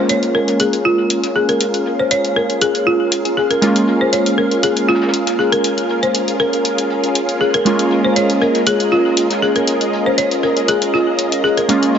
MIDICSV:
0, 0, Header, 1, 5, 480
1, 0, Start_track
1, 0, Key_signature, -5, "minor"
1, 0, Tempo, 504202
1, 1531, Time_signature, 4, 2, 24, 8
1, 11409, End_track
2, 0, Start_track
2, 0, Title_t, "Marimba"
2, 0, Program_c, 0, 12
2, 92, Note_on_c, 0, 73, 98
2, 331, Note_on_c, 0, 70, 97
2, 338, Note_off_c, 0, 73, 0
2, 571, Note_on_c, 0, 68, 97
2, 578, Note_off_c, 0, 70, 0
2, 811, Note_on_c, 0, 65, 97
2, 818, Note_off_c, 0, 68, 0
2, 1257, Note_off_c, 0, 65, 0
2, 1291, Note_on_c, 0, 68, 90
2, 1410, Note_off_c, 0, 68, 0
2, 1418, Note_on_c, 0, 70, 92
2, 1899, Note_on_c, 0, 72, 93
2, 1913, Note_off_c, 0, 70, 0
2, 1950, Note_off_c, 0, 72, 0
2, 2010, Note_on_c, 0, 73, 100
2, 2234, Note_off_c, 0, 73, 0
2, 2251, Note_on_c, 0, 70, 95
2, 2491, Note_on_c, 0, 68, 95
2, 2498, Note_off_c, 0, 70, 0
2, 2599, Note_off_c, 0, 68, 0
2, 2730, Note_on_c, 0, 65, 94
2, 3211, Note_on_c, 0, 68, 90
2, 3225, Note_off_c, 0, 65, 0
2, 3338, Note_on_c, 0, 70, 95
2, 3343, Note_off_c, 0, 68, 0
2, 3818, Note_on_c, 0, 72, 92
2, 3833, Note_off_c, 0, 70, 0
2, 3923, Note_off_c, 0, 72, 0
2, 3930, Note_on_c, 0, 73, 99
2, 4038, Note_off_c, 0, 73, 0
2, 4169, Note_on_c, 0, 70, 93
2, 4393, Note_off_c, 0, 70, 0
2, 4411, Note_on_c, 0, 68, 96
2, 4651, Note_on_c, 0, 65, 93
2, 4658, Note_off_c, 0, 68, 0
2, 5097, Note_off_c, 0, 65, 0
2, 5131, Note_on_c, 0, 68, 85
2, 5188, Note_off_c, 0, 68, 0
2, 5259, Note_on_c, 0, 70, 93
2, 5739, Note_on_c, 0, 72, 94
2, 5753, Note_off_c, 0, 70, 0
2, 6091, Note_on_c, 0, 70, 97
2, 6101, Note_off_c, 0, 72, 0
2, 7013, Note_off_c, 0, 70, 0
2, 7052, Note_on_c, 0, 68, 85
2, 7170, Note_off_c, 0, 68, 0
2, 7180, Note_on_c, 0, 70, 89
2, 7659, Note_on_c, 0, 72, 88
2, 7674, Note_off_c, 0, 70, 0
2, 7709, Note_off_c, 0, 72, 0
2, 7772, Note_on_c, 0, 73, 97
2, 8012, Note_on_c, 0, 70, 89
2, 8018, Note_off_c, 0, 73, 0
2, 8234, Note_off_c, 0, 70, 0
2, 8253, Note_on_c, 0, 68, 90
2, 8360, Note_off_c, 0, 68, 0
2, 8491, Note_on_c, 0, 65, 91
2, 8972, Note_on_c, 0, 68, 87
2, 8985, Note_off_c, 0, 65, 0
2, 9091, Note_off_c, 0, 68, 0
2, 9099, Note_on_c, 0, 70, 87
2, 9581, Note_on_c, 0, 72, 90
2, 9593, Note_off_c, 0, 70, 0
2, 9692, Note_on_c, 0, 73, 95
2, 9695, Note_off_c, 0, 72, 0
2, 9932, Note_on_c, 0, 70, 89
2, 9938, Note_off_c, 0, 73, 0
2, 10040, Note_off_c, 0, 70, 0
2, 10172, Note_on_c, 0, 68, 91
2, 10413, Note_on_c, 0, 65, 89
2, 10419, Note_off_c, 0, 68, 0
2, 10891, Note_on_c, 0, 68, 84
2, 10906, Note_off_c, 0, 65, 0
2, 11019, Note_on_c, 0, 70, 90
2, 11023, Note_off_c, 0, 68, 0
2, 11409, Note_off_c, 0, 70, 0
2, 11409, End_track
3, 0, Start_track
3, 0, Title_t, "String machine"
3, 0, Program_c, 1, 50
3, 0, Note_on_c, 1, 61, 78
3, 0, Note_on_c, 1, 65, 75
3, 0, Note_on_c, 1, 68, 71
3, 0, Note_on_c, 1, 70, 73
3, 0, Note_on_c, 1, 77, 88
3, 7278, Note_off_c, 1, 77, 0
3, 7288, Note_on_c, 1, 75, 90
3, 11409, Note_off_c, 1, 61, 0
3, 11409, Note_off_c, 1, 65, 0
3, 11409, Note_off_c, 1, 68, 0
3, 11409, Note_off_c, 1, 70, 0
3, 11409, Note_off_c, 1, 75, 0
3, 11409, End_track
4, 0, Start_track
4, 0, Title_t, "Synth keys"
4, 0, Program_c, 2, 88
4, 0, Note_on_c, 2, 56, 72
4, 0, Note_on_c, 2, 58, 66
4, 0, Note_on_c, 2, 61, 68
4, 0, Note_on_c, 2, 65, 78
4, 3419, Note_off_c, 2, 56, 0
4, 3422, Note_off_c, 2, 58, 0
4, 3425, Note_off_c, 2, 61, 0
4, 3428, Note_off_c, 2, 65, 0
4, 3442, Note_on_c, 2, 56, 75
4, 3448, Note_on_c, 2, 58, 68
4, 3453, Note_on_c, 2, 61, 68
4, 3459, Note_on_c, 2, 65, 82
4, 7259, Note_off_c, 2, 56, 0
4, 7262, Note_off_c, 2, 58, 0
4, 7265, Note_off_c, 2, 61, 0
4, 7268, Note_off_c, 2, 65, 0
4, 7282, Note_on_c, 2, 56, 73
4, 7288, Note_on_c, 2, 58, 65
4, 7294, Note_on_c, 2, 61, 67
4, 7299, Note_on_c, 2, 65, 79
4, 11099, Note_off_c, 2, 56, 0
4, 11102, Note_off_c, 2, 58, 0
4, 11105, Note_off_c, 2, 61, 0
4, 11108, Note_off_c, 2, 65, 0
4, 11123, Note_on_c, 2, 56, 76
4, 11128, Note_on_c, 2, 58, 68
4, 11134, Note_on_c, 2, 61, 67
4, 11140, Note_on_c, 2, 65, 84
4, 11409, Note_off_c, 2, 56, 0
4, 11409, Note_off_c, 2, 58, 0
4, 11409, Note_off_c, 2, 61, 0
4, 11409, Note_off_c, 2, 65, 0
4, 11409, End_track
5, 0, Start_track
5, 0, Title_t, "Drums"
5, 89, Note_on_c, 9, 42, 80
5, 99, Note_off_c, 9, 42, 0
5, 99, Note_on_c, 9, 42, 82
5, 194, Note_off_c, 9, 42, 0
5, 217, Note_on_c, 9, 42, 52
5, 312, Note_off_c, 9, 42, 0
5, 332, Note_on_c, 9, 42, 61
5, 427, Note_off_c, 9, 42, 0
5, 456, Note_on_c, 9, 38, 44
5, 457, Note_on_c, 9, 42, 37
5, 552, Note_off_c, 9, 38, 0
5, 553, Note_off_c, 9, 42, 0
5, 568, Note_on_c, 9, 42, 75
5, 574, Note_off_c, 9, 42, 0
5, 574, Note_on_c, 9, 42, 76
5, 669, Note_off_c, 9, 42, 0
5, 697, Note_on_c, 9, 42, 53
5, 792, Note_off_c, 9, 42, 0
5, 809, Note_on_c, 9, 42, 60
5, 905, Note_off_c, 9, 42, 0
5, 936, Note_on_c, 9, 42, 39
5, 1032, Note_off_c, 9, 42, 0
5, 1044, Note_on_c, 9, 42, 84
5, 1049, Note_off_c, 9, 42, 0
5, 1049, Note_on_c, 9, 42, 76
5, 1144, Note_off_c, 9, 42, 0
5, 1177, Note_on_c, 9, 42, 52
5, 1184, Note_on_c, 9, 38, 44
5, 1272, Note_off_c, 9, 42, 0
5, 1279, Note_off_c, 9, 38, 0
5, 1291, Note_on_c, 9, 42, 68
5, 1386, Note_off_c, 9, 42, 0
5, 1417, Note_on_c, 9, 42, 37
5, 1512, Note_off_c, 9, 42, 0
5, 1529, Note_on_c, 9, 42, 74
5, 1531, Note_off_c, 9, 42, 0
5, 1531, Note_on_c, 9, 42, 86
5, 1626, Note_off_c, 9, 42, 0
5, 1657, Note_on_c, 9, 42, 49
5, 1752, Note_off_c, 9, 42, 0
5, 1767, Note_on_c, 9, 42, 61
5, 1862, Note_off_c, 9, 42, 0
5, 2009, Note_on_c, 9, 42, 77
5, 2010, Note_off_c, 9, 42, 0
5, 2010, Note_on_c, 9, 42, 79
5, 2105, Note_off_c, 9, 42, 0
5, 2135, Note_on_c, 9, 42, 41
5, 2138, Note_off_c, 9, 42, 0
5, 2138, Note_on_c, 9, 42, 52
5, 2233, Note_off_c, 9, 42, 0
5, 2249, Note_on_c, 9, 42, 67
5, 2345, Note_off_c, 9, 42, 0
5, 2377, Note_on_c, 9, 42, 35
5, 2472, Note_off_c, 9, 42, 0
5, 2486, Note_on_c, 9, 42, 89
5, 2489, Note_off_c, 9, 42, 0
5, 2489, Note_on_c, 9, 42, 76
5, 2584, Note_off_c, 9, 42, 0
5, 2610, Note_on_c, 9, 42, 41
5, 2617, Note_off_c, 9, 42, 0
5, 2617, Note_on_c, 9, 42, 51
5, 2713, Note_off_c, 9, 42, 0
5, 2729, Note_on_c, 9, 42, 59
5, 2824, Note_off_c, 9, 42, 0
5, 2964, Note_on_c, 9, 42, 88
5, 2969, Note_off_c, 9, 42, 0
5, 2969, Note_on_c, 9, 42, 75
5, 3064, Note_off_c, 9, 42, 0
5, 3097, Note_on_c, 9, 42, 50
5, 3193, Note_off_c, 9, 42, 0
5, 3212, Note_on_c, 9, 42, 64
5, 3307, Note_off_c, 9, 42, 0
5, 3338, Note_on_c, 9, 42, 36
5, 3340, Note_off_c, 9, 42, 0
5, 3340, Note_on_c, 9, 42, 46
5, 3435, Note_off_c, 9, 42, 0
5, 3449, Note_on_c, 9, 42, 69
5, 3454, Note_off_c, 9, 42, 0
5, 3454, Note_on_c, 9, 42, 79
5, 3549, Note_off_c, 9, 42, 0
5, 3578, Note_on_c, 9, 42, 49
5, 3673, Note_off_c, 9, 42, 0
5, 3688, Note_on_c, 9, 42, 61
5, 3783, Note_off_c, 9, 42, 0
5, 3929, Note_on_c, 9, 42, 84
5, 3930, Note_off_c, 9, 42, 0
5, 3930, Note_on_c, 9, 42, 78
5, 4025, Note_off_c, 9, 42, 0
5, 4058, Note_on_c, 9, 42, 49
5, 4153, Note_off_c, 9, 42, 0
5, 4298, Note_on_c, 9, 42, 34
5, 4393, Note_off_c, 9, 42, 0
5, 4410, Note_on_c, 9, 42, 73
5, 4416, Note_off_c, 9, 42, 0
5, 4416, Note_on_c, 9, 42, 82
5, 4512, Note_off_c, 9, 42, 0
5, 4538, Note_on_c, 9, 42, 50
5, 4633, Note_off_c, 9, 42, 0
5, 4646, Note_on_c, 9, 38, 84
5, 4655, Note_on_c, 9, 42, 57
5, 4709, Note_off_c, 9, 38, 0
5, 4709, Note_on_c, 9, 38, 78
5, 4715, Note_off_c, 9, 42, 0
5, 4715, Note_on_c, 9, 42, 60
5, 4771, Note_off_c, 9, 42, 0
5, 4771, Note_on_c, 9, 42, 63
5, 4781, Note_off_c, 9, 38, 0
5, 4781, Note_on_c, 9, 38, 85
5, 4837, Note_off_c, 9, 38, 0
5, 4837, Note_on_c, 9, 38, 82
5, 4839, Note_off_c, 9, 42, 0
5, 4839, Note_on_c, 9, 42, 65
5, 4890, Note_off_c, 9, 42, 0
5, 4890, Note_on_c, 9, 42, 71
5, 4892, Note_off_c, 9, 42, 0
5, 4892, Note_on_c, 9, 42, 81
5, 4932, Note_off_c, 9, 38, 0
5, 4987, Note_off_c, 9, 42, 0
5, 5012, Note_on_c, 9, 38, 50
5, 5019, Note_on_c, 9, 42, 50
5, 5107, Note_off_c, 9, 38, 0
5, 5114, Note_off_c, 9, 42, 0
5, 5138, Note_on_c, 9, 42, 71
5, 5233, Note_off_c, 9, 42, 0
5, 5259, Note_on_c, 9, 42, 35
5, 5354, Note_off_c, 9, 42, 0
5, 5371, Note_on_c, 9, 42, 83
5, 5372, Note_off_c, 9, 42, 0
5, 5372, Note_on_c, 9, 42, 67
5, 5467, Note_off_c, 9, 42, 0
5, 5500, Note_on_c, 9, 42, 47
5, 5595, Note_off_c, 9, 42, 0
5, 5610, Note_on_c, 9, 42, 64
5, 5705, Note_off_c, 9, 42, 0
5, 5740, Note_on_c, 9, 42, 32
5, 5835, Note_off_c, 9, 42, 0
5, 5845, Note_on_c, 9, 42, 76
5, 5851, Note_off_c, 9, 42, 0
5, 5851, Note_on_c, 9, 42, 74
5, 5946, Note_off_c, 9, 42, 0
5, 5973, Note_on_c, 9, 42, 38
5, 5979, Note_off_c, 9, 42, 0
5, 5979, Note_on_c, 9, 42, 48
5, 6074, Note_off_c, 9, 42, 0
5, 6085, Note_on_c, 9, 42, 61
5, 6180, Note_off_c, 9, 42, 0
5, 6219, Note_on_c, 9, 42, 34
5, 6314, Note_off_c, 9, 42, 0
5, 6326, Note_on_c, 9, 42, 79
5, 6331, Note_off_c, 9, 42, 0
5, 6331, Note_on_c, 9, 42, 71
5, 6426, Note_off_c, 9, 42, 0
5, 6458, Note_on_c, 9, 42, 49
5, 6460, Note_off_c, 9, 42, 0
5, 6460, Note_on_c, 9, 42, 42
5, 6555, Note_off_c, 9, 42, 0
5, 6567, Note_on_c, 9, 42, 57
5, 6663, Note_off_c, 9, 42, 0
5, 6698, Note_on_c, 9, 42, 34
5, 6794, Note_off_c, 9, 42, 0
5, 6810, Note_on_c, 9, 42, 82
5, 6811, Note_off_c, 9, 42, 0
5, 6811, Note_on_c, 9, 42, 69
5, 6906, Note_off_c, 9, 42, 0
5, 6938, Note_on_c, 9, 42, 47
5, 7033, Note_off_c, 9, 42, 0
5, 7053, Note_on_c, 9, 42, 60
5, 7148, Note_off_c, 9, 42, 0
5, 7174, Note_on_c, 9, 42, 42
5, 7179, Note_off_c, 9, 42, 0
5, 7179, Note_on_c, 9, 42, 33
5, 7274, Note_off_c, 9, 42, 0
5, 7291, Note_on_c, 9, 42, 77
5, 7292, Note_off_c, 9, 42, 0
5, 7292, Note_on_c, 9, 42, 68
5, 7387, Note_off_c, 9, 42, 0
5, 7419, Note_on_c, 9, 42, 49
5, 7514, Note_off_c, 9, 42, 0
5, 7528, Note_on_c, 9, 42, 69
5, 7623, Note_off_c, 9, 42, 0
5, 7771, Note_on_c, 9, 42, 75
5, 7773, Note_off_c, 9, 42, 0
5, 7773, Note_on_c, 9, 42, 74
5, 7868, Note_off_c, 9, 42, 0
5, 7899, Note_on_c, 9, 42, 48
5, 7994, Note_off_c, 9, 42, 0
5, 8009, Note_on_c, 9, 42, 72
5, 8104, Note_off_c, 9, 42, 0
5, 8139, Note_on_c, 9, 42, 33
5, 8142, Note_on_c, 9, 38, 39
5, 8234, Note_off_c, 9, 42, 0
5, 8237, Note_off_c, 9, 38, 0
5, 8245, Note_on_c, 9, 42, 82
5, 8250, Note_off_c, 9, 42, 0
5, 8250, Note_on_c, 9, 42, 72
5, 8345, Note_off_c, 9, 42, 0
5, 8378, Note_on_c, 9, 42, 50
5, 8474, Note_off_c, 9, 42, 0
5, 8487, Note_on_c, 9, 42, 66
5, 8582, Note_off_c, 9, 42, 0
5, 8621, Note_on_c, 9, 42, 42
5, 8716, Note_off_c, 9, 42, 0
5, 8731, Note_on_c, 9, 42, 70
5, 8735, Note_off_c, 9, 42, 0
5, 8735, Note_on_c, 9, 42, 84
5, 8830, Note_off_c, 9, 42, 0
5, 8859, Note_on_c, 9, 42, 47
5, 8862, Note_on_c, 9, 38, 44
5, 8954, Note_off_c, 9, 42, 0
5, 8957, Note_off_c, 9, 38, 0
5, 8973, Note_on_c, 9, 42, 68
5, 9068, Note_off_c, 9, 42, 0
5, 9098, Note_on_c, 9, 42, 34
5, 9193, Note_off_c, 9, 42, 0
5, 9210, Note_on_c, 9, 42, 70
5, 9213, Note_off_c, 9, 42, 0
5, 9213, Note_on_c, 9, 42, 77
5, 9308, Note_off_c, 9, 42, 0
5, 9339, Note_on_c, 9, 42, 51
5, 9435, Note_off_c, 9, 42, 0
5, 9453, Note_on_c, 9, 42, 65
5, 9548, Note_off_c, 9, 42, 0
5, 9688, Note_on_c, 9, 42, 73
5, 9691, Note_off_c, 9, 42, 0
5, 9691, Note_on_c, 9, 42, 77
5, 9786, Note_off_c, 9, 42, 0
5, 9819, Note_on_c, 9, 42, 51
5, 9915, Note_off_c, 9, 42, 0
5, 9929, Note_on_c, 9, 42, 71
5, 10024, Note_off_c, 9, 42, 0
5, 10059, Note_on_c, 9, 42, 35
5, 10154, Note_off_c, 9, 42, 0
5, 10170, Note_on_c, 9, 42, 74
5, 10174, Note_off_c, 9, 42, 0
5, 10174, Note_on_c, 9, 42, 88
5, 10269, Note_off_c, 9, 42, 0
5, 10299, Note_on_c, 9, 42, 53
5, 10301, Note_off_c, 9, 42, 0
5, 10301, Note_on_c, 9, 42, 38
5, 10396, Note_off_c, 9, 42, 0
5, 10418, Note_on_c, 9, 42, 60
5, 10513, Note_off_c, 9, 42, 0
5, 10645, Note_on_c, 9, 42, 81
5, 10650, Note_off_c, 9, 42, 0
5, 10650, Note_on_c, 9, 42, 75
5, 10745, Note_off_c, 9, 42, 0
5, 10779, Note_on_c, 9, 42, 49
5, 10874, Note_off_c, 9, 42, 0
5, 10898, Note_on_c, 9, 42, 60
5, 10993, Note_off_c, 9, 42, 0
5, 11017, Note_on_c, 9, 42, 40
5, 11019, Note_off_c, 9, 42, 0
5, 11019, Note_on_c, 9, 42, 36
5, 11114, Note_off_c, 9, 42, 0
5, 11130, Note_on_c, 9, 42, 75
5, 11132, Note_off_c, 9, 42, 0
5, 11132, Note_on_c, 9, 42, 78
5, 11227, Note_off_c, 9, 42, 0
5, 11259, Note_on_c, 9, 42, 53
5, 11354, Note_off_c, 9, 42, 0
5, 11372, Note_on_c, 9, 42, 65
5, 11409, Note_off_c, 9, 42, 0
5, 11409, End_track
0, 0, End_of_file